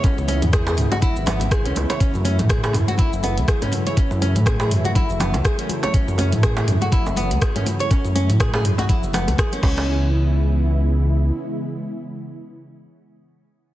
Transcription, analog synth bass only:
X:1
M:4/4
L:1/16
Q:"Swing 16ths" 1/4=122
K:C#m
V:1 name="Analog synth bass" clef=bass
z C,,2 E,,3 C,, z2 G,,, G,,,3 C,, C,, z | z F,,2 A,,3 F,, z2 F,,,2 C,, z4 | z F,,2 A,,3 F,, z2 F,,,2 C,, z4 | z F,,2 A,,3 F,, z2 F,,,2 C,, z4 |
z F,,2 A,,3 F,, z2 F,,,2 C,, z2 C,,2- | C,,12 z4 | z16 |]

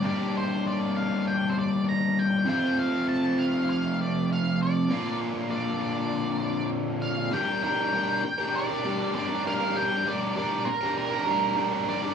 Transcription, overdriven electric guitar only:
X:1
M:4/4
L:1/16
Q:1/4=99
K:Gm
V:1 name="Overdriven electric guitar"
[G,,D,G,B,DG]16 | [F,,C,F,A,CF]16 | [B,,D,B,DF]16 | [G,DGB] [DGB] [G,DGB]2 [G,DGB]3 [DGB]2 [DGB] [G,DGB]2 [G,DGB] [DGB] [G,DGB] [DGB] |
[G,DGB] [DGB] [G,DGB]2 [G,DGB]3 [DGB]2 [DGB] [G,DGB]2 [G,DGB] [DGB] [G,DGB] [DGB] |]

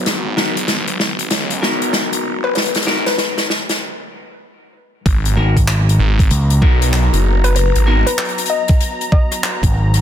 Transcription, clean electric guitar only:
X:1
M:4/4
L:1/16
Q:"Swing 16ths" 1/4=96
K:G#m
V:1 name="Clean electric guitar"
[B,DFA]2 [B,DFA] z6 z [B,DFA]6- | [B,DFA]2 [B,DFA] z12 z | z2 [B,DFA] z6 z [B,DFA]6- | [B,DFA]2 [B,DFA] z12 z |]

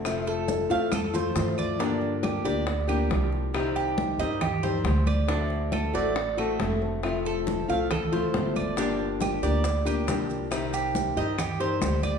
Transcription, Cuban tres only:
X:1
M:4/4
L:1/8
Q:1/4=138
K:Gm
V:1 name="Cuban tres"
z A2 f A c2 d | D2 G d2 G2 z | z G2 e G c2 d | D2 A d2 A2 z |
z A2 f A c2 d | D2 G d2 G2 z | z G2 e G c2 d |]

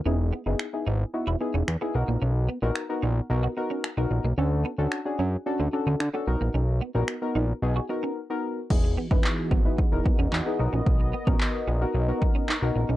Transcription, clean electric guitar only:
X:1
M:4/4
L:1/16
Q:1/4=111
K:B
V:1 name="Clean electric guitar"
C z B, z3 D z2 E z C z B, z A, | C z B, z3 D z2 F z C z B, z A, | C z B, z3 C z2 =D z C z B, z A, | C z B, z3 D z2 F z C z4 |
z2 B, C z2 B, z3 B, C D z2 C | z2 B, C z2 B, z3 B, C D z2 C |]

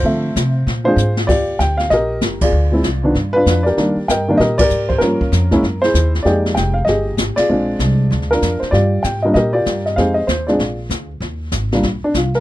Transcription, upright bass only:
X:1
M:4/4
L:1/8
Q:"Swing" 1/4=193
K:Bbmix
V:1 name="Upright bass" clef=bass
D,2 C,2 B,,2 A,,2 | [K:Eb] E,,2 D,,2 B,,,2 G,,,2 | D,,2 C,,2 G,,2 F,,2 | E,, z G,,2 B,,2 A,,2 |
G,, z F,,2 _G,,2 E,,2 | F,,2 F,,,2 G,,,2 A,,, z | B,,,2 C,,2 D,,2 F,, z | G,,2 A,,2 B,,2 G,,2 |
F,,2 E,,2 B,,,2 D,,2 | E,,2 A,,,2 B,,, z C,,2 |]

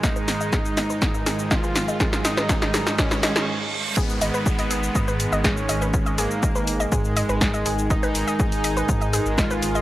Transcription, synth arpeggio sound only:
X:1
M:4/4
L:1/16
Q:1/4=122
K:G#m
V:1 name="Synth arpeggio sound"
d B z d G z d B z d G z d B z d | G z d B z d G z d B d G z4 | G z d B z d G z d B z d G z d B | z d G z d B z d G z d B z d G z |
d B z d G z d B z d G z d B z d |]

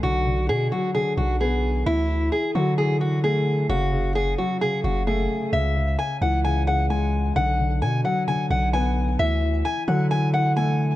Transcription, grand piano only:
X:1
M:4/4
L:1/8
Q:1/4=131
K:C#phr
V:1 name="Grand piano" clef=bass
D, D,2 F, D, D, B,2 | E, E,2 F, E, E, A,2 | C, C,2 F, C, C, A,2 | C, C,2 E, C, C, G,2 |
D, D,2 F, D, D, B,2 | E, E,2 F, E, E, A,2 |]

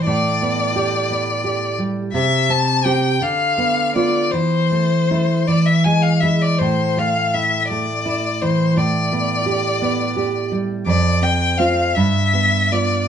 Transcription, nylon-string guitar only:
X:1
M:6/8
L:1/8
Q:3/8=56
K:Gmix
V:1 name="Nylon-string guitar"
A,, B, G B, G G, | C, C [CG] D, B, [B,F] | E, A, [A,E] E, ^G, [G,E] | A,, A, E A, E E, |
A,, B, G B, G G, | F,, C [CF] G,, B, [B,F] |]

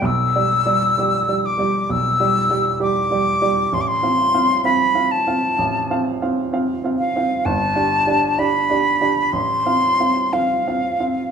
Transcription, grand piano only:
X:1
M:4/4
L:1/8
Q:1/4=65
K:Flyd
V:1 name="Grand piano"
(3B,,, [G,Gd] [G,Gd] (3[G,Gd] [G,Gd] [G,Gd] (3B,,, [G,Gd] [G,Gd] (3[G,Gd] [G,Gd] [G,Gd] | (3A,,, [CFf] [CFf] (3[CFf] [CFf] [CFf] (3A,,, [CFf] [CFf] (3[CFf] [CFf] [CFf] | (3G,,, [DGd] [DGd] (3[DGd] [DGd] [DGd] (3A,,, [CFf] [CFf] (3[CFf] [CFf] [CFf] |]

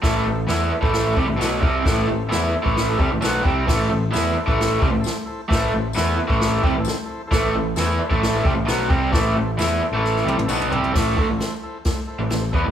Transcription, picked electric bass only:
X:1
M:4/4
L:1/16
Q:1/4=132
K:Am
V:1 name="Picked electric bass" clef=bass
A,,,2 A,,,2 E,,2 z A,,,3 C,, A,,, B,,,2 C,,2 | A,,,2 A,,,2 E,,2 z A,,,3 C,, A,,, B,,,2 C,,2 | A,,,2 A,,,2 E,,2 z A,,,3 C,, A,,, z4 | A,,,2 A,,,2 E,,2 z A,,,3 C,, A,,, z4 |
A,,,2 A,,,2 E,,2 z A,,,3 C,, A,,, B,,,2 C,,2 | A,,,2 A,,,2 E,,2 z A,,,3 C,, A,,, B,,,2 C,,2 | A,,,2 D,, A,,, z6 z A,,, A,,,2 E,, A,,, |]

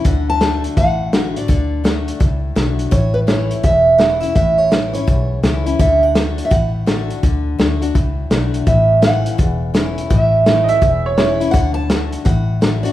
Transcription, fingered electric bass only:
X:1
M:4/4
L:1/8
Q:"Swing" 1/4=167
K:Dlyd
V:1 name="Fingered electric bass" clef=bass
D,,4 A,,,4 | D,,4 C,,2 B,,,2 | A,,,4 E,,,4 | A,,,4 B,,,2 C,,2 |
D,,4 A,,,4 | D,,2 D,,2 C,,2 B,,,2 | A,,,4 E,,,4 | A,,,4 E,,,4 |
D,,4 A,,,4 |]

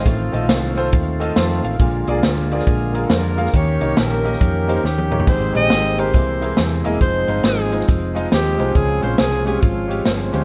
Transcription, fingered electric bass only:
X:1
M:4/4
L:1/8
Q:"Swing" 1/4=138
K:Fm
V:1 name="Fingered electric bass" clef=bass
=A,,, B,,, C,,2 E,,2 F,, A,,, | B,,, C,, =D,,2 B,,,2 F,,2 | E,, C,, B,,,2 F,,2 E,,2 | A,,, B,,, A,,,2 C,,2 =E,, =E,,, |
F,,, G,,, A,,,2 F,,,2 E,, C,, | D,, B,,, C,,2 A,,,2 G,,, =D,, |]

